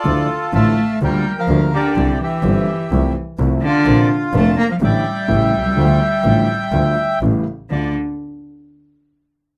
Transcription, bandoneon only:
\new Staff \with { instrumentName = "Bandoneon" } { \time 4/4 \key d \minor \tempo 4 = 126 << { d''8 r8 a''4 g''8. f''8. d''8~ | d''8 e''2 r4 d''8~ | d''8 r8 a''8 bes''16 f''16 g''2~ | g''2. r4 |
d''8 r2. r8 | } \\ { <f' a'>4 <e'' f''>4 bes'8. bes'8. g'8~ | g'8 g'2 r4 f'8~ | f'4. r8 <d'' e''>2~ | <d'' e''>2. r4 |
r1 | } >> }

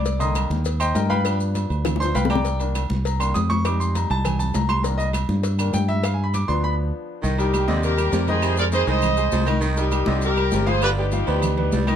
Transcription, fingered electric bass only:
\new Staff \with { instrumentName = "Fingered electric bass" } { \clef bass \time 4/4 \key c \minor \tempo 4 = 201 c,4. ees,4. g,4~ | g,4. d,4. c,4~ | c,4. c,4. f,4~ | f,4. c,4. c,4~ |
c,4. g,4. g,4~ | g,4. d,4. r4 | c,4. ees,4. f,4~ | f,4. c,4. c,4~ |
c,4. c,4. g,,4~ | g,,4. d,4. c,4 | }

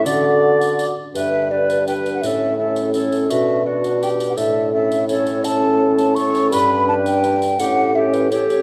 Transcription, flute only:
\new Staff \with { instrumentName = "Flute" } { \time 3/4 \key a \mixolydian \tempo 4 = 167 d'''2~ d'''8 r8 | e''4 d''4 g''8. fis''16 | e''4 e''4 cis''4 | e''4 d''4 g''8. fis''16 |
e''4 e''4 cis''4 | a''4. a''8 cis'''4 | b''4 a''8 g''4. | fis''4 e''8 b'8 cis''8 cis''8 | }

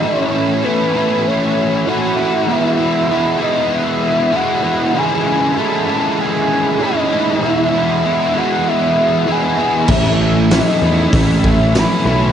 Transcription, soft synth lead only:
\new Staff \with { instrumentName = "Soft synth lead" } { \time 4/4 \key a \lydian \tempo 4 = 97 cis''4 b'4 cis''4 fis''4 | e''4. dis''8 e''4 fis''4 | gis''4 a''4 gis''4 dis''4 | e''4. fis''8 e''4 gis''4 |
e''4 dis''4 e''4 b''4 | }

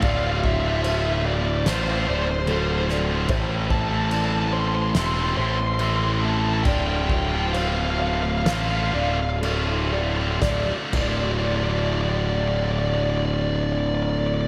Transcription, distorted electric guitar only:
\new Staff \with { instrumentName = "Distorted electric guitar" } { \time 4/4 \key d \minor \tempo 4 = 69 <d, a, d a c' f'>8. <d a c' f'>16 <d, a, d a c' f'>4 <d a c' f'>16 <d a c' f'>16 <d a c' f'>8 <d, a, d a c' f'>8 <d a c' f'>16 <d a c' f'>16 | <a, e a c' e' a'>8. <a c' e' a'>16 <a, e a c' e' a'>4 <a c' e' a'>16 <a c' e' a'>16 <a c' e' a'>8 <a, e a c' e' a'>8 <a c' e' a'>16 <a c' e' a'>16 | <d, a, d a c' f'>8. <d a c' f'>16 <d, a, d a c' f'>4 <d a c' f'>16 <d a c' f'>16 <d a c' f'>8 <d, a, d a c' f'>8 <d a c' f'>16 <d a c' f'>16 | <d, a, d a c' f'>16 r16 <d, a, d a c' f'>2.~ <d, a, d a c' f'>8 | }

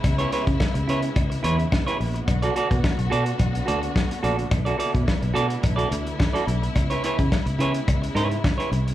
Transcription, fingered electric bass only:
\new Staff \with { instrumentName = "Fingered electric bass" } { \clef bass \time 4/4 \key b \dorian \tempo 4 = 107 cis,8 r16 cis16 r16 cis,16 cis8 cis,8 e,8 r8 bes,,8 | b,,8 r16 b,16 r16 b,,16 b,8 b,,8 d,8 r8 bes,,8 | b,,8 r16 b,16 r16 b,,16 b,8 b,,8 d,8 r8 b,,8 | cis,8 r16 cis16 r16 cis,16 cis8 cis,8 gis,8 r8 c,8 | }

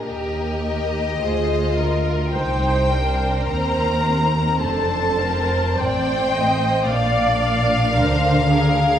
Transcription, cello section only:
\new Staff \with { instrumentName = "Cello section" } { \clef bass \time 4/4 \key ees \major \tempo 4 = 53 ees,4 d,4 c,4 ees,4 | f,4 a,4 bes,4 d4 | }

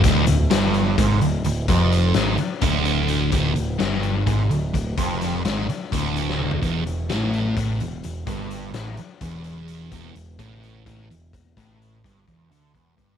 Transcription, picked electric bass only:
\new Staff \with { instrumentName = "Picked electric bass" } { \clef bass \time 7/8 \key e \minor \tempo 4 = 127 d,,8 d,,8 g,,4 aes,,8 d,,8 d,,8 | f,,4 aes,,8 r8 d,,4. | d,,8 d,,8 g,,4 aes,,8 d,,8 d,,8 | f,,4 aes,,8 r8 d,,4. |
e,,8 e,,8 a,,4 a,,8 e,,8 e,,8 | g,,4 a,,8 r8 e,,4. | e,,8 e,,8 a,,4 a,,8 e,,8 e,,8 | a,,4 g,,8 e,,8 d,8 e,,8 g,,8 | }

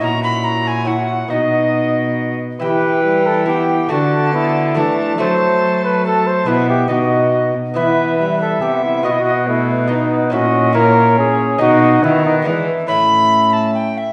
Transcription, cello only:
\new Staff \with { instrumentName = "Cello" } { \clef bass \time 3/4 \key e \minor \tempo 4 = 140 ais,2. | b,2~ b,8 r8 | e2. | d2 e4 |
fis2. | b,4 b,4. r8 | e2 c4 | b,2. |
ais,2. | b,4 dis4 e8 r8 | \key a \dorian a,2. | }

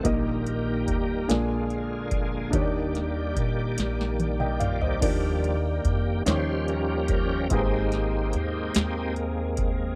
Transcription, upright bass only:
\new Staff \with { instrumentName = "Upright bass" } { \clef bass \time 6/8 \key ees \major \tempo 4. = 48 bes,,4 ees,8 bes,,4. | ees,4 bes,8 bes,,4. | ees,4 f,8 ees,4. | aes,,4 ees,8 ees,4. | }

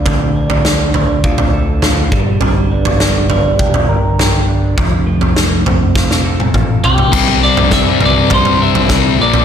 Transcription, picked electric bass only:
\new Staff \with { instrumentName = "Picked electric bass" } { \clef bass \time 4/4 \key c \mixolydian \tempo 4 = 102 d,2 d,4. g,,8 | g,,2 e,,8 g,,4. | f,,2 f,,4 a,,8 c,8 | c,4 c,4 c,16 r16 c16 r16 c,8 bes,,8 | }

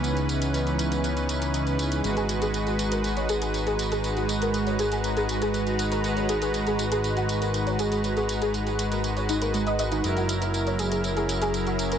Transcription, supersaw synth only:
\new Staff \with { instrumentName = "Supersaw synth" } { \time 4/4 \key gis \minor \tempo 4 = 120 <e cis' b'>1 | <gis fis' b'>1~ | <gis fis' b'>1 | <gis fis' b'>1~ |
<gis fis' b'>1 | <fis e' ais'>1 | }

